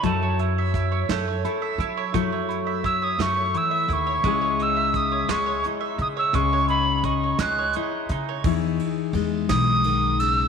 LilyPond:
<<
  \new Staff \with { instrumentName = "Tin whistle" } { \time 6/8 \key cis \minor \tempo 4. = 57 a''8 r2 r8 | r4 e'''16 dis'''16 cis'''8 e'''8 cis'''8~ | cis'''8 e'''8 dis'''8 cis'''8 r8 dis'''16 e'''16 | cis'''8 b''8 cis'''8 fis'''8 r4 |
r4. dis'''4 e'''8 | }
  \new Staff \with { instrumentName = "Mandolin" } { \time 6/8 \key cis \minor a16 cis''16 e'16 e''16 e'16 cis''16 a16 cis''16 e'16 e''16 e'16 cis''16 | a16 cis''16 e'16 e''16 e'16 cis''16 a16 cis''16 e'16 e''16 e'16 cis''16 | gis16 cis''16 dis'16 e''8 cis''16 gis16 cis''16 dis'16 e''8 cis''16 | gis16 cis''16 dis'8 dis'16 cis''16 gis16 cis''16 dis'8 dis'16 cis''16 |
r2. | }
  \new Staff \with { instrumentName = "Steel-string acoustic guitar" } { \clef bass \time 6/8 \key cis \minor << { e'2 a'4 | e'2. | <gis e' gis'>2 e'4 | r2 e'4 |
<dis' e' gis'>2. | } \\ { fis4. r4. | fis4. fis8 e8 dis8 | cis4. r4. | cis4. r4. |
e4 gis8 e8 dis8 cis8 | } >> }
  \new Staff \with { instrumentName = "Upright bass" } { \clef bass \time 6/8 \key cis \minor fis,4. fis,8 r8 fis8 | fis,4. fis,8 r8 dis,8 | cis,4. cis,8 r8 cis8 | cis,4. cis,8 r8 cis8 |
e,8 r8 e,8 b,,4. | }
  \new DrumStaff \with { instrumentName = "Drums" } \drummode { \time 6/8 <hh bd>8 hh8 <hh bd>8 <hh sn>8 hh8 hh8 | <hh bd>8 hh8 <hh bd>8 <hh sn>8 hh8 hh8 | <hh bd>8 hh8 <hh bd>8 <hh sn>8 hh8 hh8 | <hh bd>8 hh8 <hh bd>8 <hh sn>8 hh8 hh8 |
<bd cymr>8 cymr8 cymr8 <bd cymr sn>8 cymr8 cymr8 | }
>>